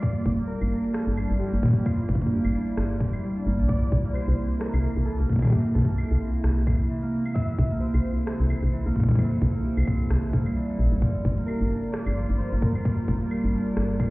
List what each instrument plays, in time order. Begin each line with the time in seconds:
Already playing: ambient pad G3 A#3, harp A#3 D4 G4
0.00 harp F3, ambient pad E4, synth keys D5, kick, closed hi-hat
0.16 closed hi-hat
0.26 fm bass G1, kick
0.38 harp A#3, closed hi-hat
0.47 harp G4, synth keys A#4
0.61 fm bass G1, closed hi-hat, claves
0.72 harp D4
0.84 closed hi-hat
0.93 harp F3, synth keys A4, cross-stick
1.07 fm bass G1
1.17 harp D4, claves
1.30 fm bass G1, closed hi-hat
1.39 harp F3, synth keys G4
1.53 fm bass G1, harp A#3, closed hi-hat
1.63 kick
1.66 kick
1.68 kick
1.71 kick
1.73 harp A#3, kick, closed hi-hat
1.85 harp F3, synth keys F4, kick, claves
1.99 closed hi-hat
2.07 fm bass G1, synth keys D4, kick
2.15 kick
2.22 harp A#3, kick, closed hi-hat
2.27 kick
2.32 harp G4
2.44 fm bass G1, closed hi-hat, claves
2.47 closed hi-hat
2.49 closed hi-hat
2.51 closed hi-hat
2.53 harp D4, closed hi-hat
2.67 closed hi-hat
2.77 fm bass G1, harp F3, cross-stick
2.90 closed hi-hat
3.00 fm bass F1, harp G4, kick
3.13 closed hi-hat, claves
3.23 harp G3
3.36 harp D4, closed hi-hat
3.46 fm bass G1, harp A#3
3.59 fm bass C2, harp D4, closed hi-hat
3.68 ambient pad C3 A#3, harp E3, synth keys D5, kick
3.82 closed hi-hat
3.92 fm bass C2, kick
4.05 harp A#3, closed hi-hat
4.13 harp G4, synth keys C5, claves
4.28 fm bass C2, closed hi-hat
4.38 harp C4
4.51 closed hi-hat
4.59 harp E3, synth keys A#4, cross-stick
4.74 fm bass C2, claves
4.84 harp E3
4.97 fm bass C2, closed hi-hat
5.05 harp E3, synth keys A4
5.19 fm bass C2, harp A#3, closed hi-hat
5.29 kick
5.33 kick
5.36 kick
5.39 kick
5.42 harp A#3, kick, closed hi-hat, claves
5.45 kick
5.47 kick
5.50 harp E3, synth keys G4, kick
5.52 kick
5.65 closed hi-hat
5.74 fm bass C2, synth keys A4, kick
5.79 kick
5.82 kick
5.85 harp A#3, kick, closed hi-hat
5.98 harp G4, claves
6.11 fm bass C2, closed hi-hat
6.21 harp C4
6.34 closed hi-hat
6.44 fm bass C2, harp E3, cross-stick
6.67 fm bass A#1, harp E3, kick, claves
6.80 closed hi-hat
6.90 harp E3
7.03 harp A#3, closed hi-hat
7.26 harp A#3, closed hi-hat, claves
7.34 harp E3, ambient pad A4, synth keys E5, kick
7.48 closed hi-hat
7.58 fm bass C2, kick
7.71 harp A#3, closed hi-hat
7.80 harp G4, synth keys C5
7.94 fm bass C2, closed hi-hat, claves
8.04 harp C4
8.17 closed hi-hat
8.26 harp E3, synth keys C5, cross-stick
8.40 fm bass C2
8.50 harp E3, claves
8.63 fm bass C2, closed hi-hat
8.73 harp E3
8.86 fm bass C2, harp A#3, closed hi-hat
8.96 kick
9.00 kick
9.03 kick
9.09 harp A#3, kick, closed hi-hat
9.11 kick
9.15 kick, claves
9.19 harp E3, kick
9.31 closed hi-hat
9.42 fm bass C2, kick
9.54 harp A#3, closed hi-hat
9.65 harp G4
9.77 fm bass C2, closed hi-hat, claves
9.80 claves
9.82 claves
9.85 harp C4, kick, claves
10.00 closed hi-hat
10.10 fm bass C2, harp E3, cross-stick
10.23 closed hi-hat
10.33 fm bass C2, harp A#3, kick
10.46 harp G3, closed hi-hat, claves
10.56 harp E3
10.69 harp E3, closed hi-hat
10.79 fm bass A#1
10.92 fm bass G1, harp G3, closed hi-hat
11.02 harp F3, ambient pad G3 F4 A#4, kick
11.15 closed hi-hat
11.25 fm bass G1, kick
11.38 harp A#3, closed hi-hat
11.46 harp G4, synth keys A#4, claves
11.61 fm bass G1, closed hi-hat
11.71 harp D4
11.84 closed hi-hat
11.92 harp F3, synth keys D5, cross-stick
12.06 fm bass G1, claves
12.17 harp F3
12.29 fm bass G1, closed hi-hat
12.38 harp F3, synth keys C5
12.52 fm bass G1, harp A#3, closed hi-hat
12.61 synth keys A#4, kick
12.75 harp A#3, closed hi-hat, claves
12.85 harp F3, kick
12.98 closed hi-hat
13.08 fm bass G1, kick
13.21 harp A#3, closed hi-hat
13.31 harp G4, claves
13.44 fm bass G1, closed hi-hat
13.54 harp D4
13.67 closed hi-hat
13.77 fm bass G1, harp F3, cross-stick
14.00 fm bass F1, harp F3, kick, claves